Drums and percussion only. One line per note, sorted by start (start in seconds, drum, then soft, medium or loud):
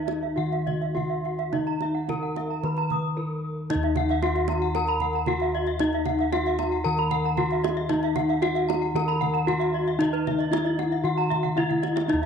0.08 kendang slap soft
0.08 kendang high soft
0.52 kendang slap soft
0.67 kendang low soft
0.82 kendang slap soft
0.97 kendang slap soft
0.97 kendang low soft
1.25 kendang slap soft
1.39 kendang slap soft
1.53 kendang high soft
1.53 kendang low soft
1.67 kendang slap soft
1.81 kendang slap soft
1.81 kendang high soft
2.09 kendang slap soft
2.09 kendang high soft
2.09 kendang low soft
2.36 kendang slap soft
2.36 kendang high soft
2.64 kendang high soft
2.77 kendang slap soft
2.90 kendang low soft
3.70 kendang low medium
3.83 kendang slap soft
3.96 kendang high soft
3.96 kendang low medium
4.09 kendang slap soft
4.22 kendang high medium
4.36 kendang slap soft
4.48 kendang high medium
4.75 kendang high soft
4.87 kendang slap soft
5.00 kendang low soft
5.13 kendang slap soft
5.26 kendang low medium
5.40 kendang slap soft
5.67 kendang slap soft
5.79 kendang low medium
5.93 kendang slap soft
6.05 kendang high soft
6.05 kendang low soft
6.19 kendang slap soft
6.33 kendang high medium
6.46 kendang slap soft
6.59 kendang high soft
6.98 kendang slap soft
7.11 kendang low medium
7.24 kendang slap soft
7.37 kendang low medium
7.51 kendang slap soft
7.64 kendang high medium
7.77 kendang slap soft
7.89 kendang low medium
8.03 kendang slap soft
8.16 kendang high soft
8.16 kendang low medium
8.29 kendang slap soft
8.42 kendang high soft
8.56 kendang slap soft
8.70 kendang high medium
8.96 kendang high soft
9.09 kendang slap soft
9.22 kendang low soft
9.35 kendang slap soft
9.48 kendang low soft
9.62 kendang slap soft
9.88 kendang slap soft
10.01 kendang low medium
10.14 kendang slap soft
10.27 kendang high soft
10.27 kendang low medium
10.41 kendang slap soft
10.53 kendang high medium
10.66 kendang slap soft
10.79 kendang high soft
10.92 kendang slap soft
11.18 kendang slap soft
11.31 kendang low medium
11.45 kendang low soft
11.58 kendang low soft
11.71 kendang low soft
11.83 kendang high soft
11.97 kendang high medium
12.09 kendang low medium